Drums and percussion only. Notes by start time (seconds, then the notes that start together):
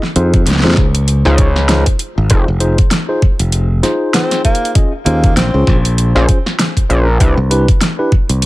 0.03 snare
0.16 closed hi-hat
0.34 kick, closed hi-hat
0.47 snare, closed hi-hat
0.51 snare
0.56 snare
0.60 snare
0.64 snare
0.68 snare
0.71 snare
0.74 kick, snare
0.78 snare
0.95 closed hi-hat
1.08 closed hi-hat
1.25 snare
1.38 kick, closed hi-hat
1.56 snare
1.69 snare, closed hi-hat
1.86 kick, closed hi-hat
1.99 closed hi-hat
2.30 kick, closed hi-hat
2.60 closed hi-hat
2.78 kick, closed hi-hat
2.91 snare, closed hi-hat
3.22 kick
3.39 closed hi-hat
3.52 closed hi-hat
3.83 snare, closed hi-hat
4.14 snare, closed hi-hat
4.31 snare, closed hi-hat
4.45 kick, closed hi-hat
4.55 closed hi-hat
4.65 closed hi-hat
4.75 kick, closed hi-hat
5.06 closed hi-hat
5.24 kick, closed hi-hat
5.37 snare, closed hi-hat
5.67 kick, snare
5.85 closed hi-hat
5.98 closed hi-hat
6.16 snare
6.29 kick, closed hi-hat
6.46 snare
6.59 snare, closed hi-hat
6.77 kick, closed hi-hat
6.90 closed hi-hat
7.20 kick, closed hi-hat
7.51 closed hi-hat
7.68 kick, closed hi-hat
7.81 snare, closed hi-hat
8.12 kick
8.29 closed hi-hat
8.42 closed hi-hat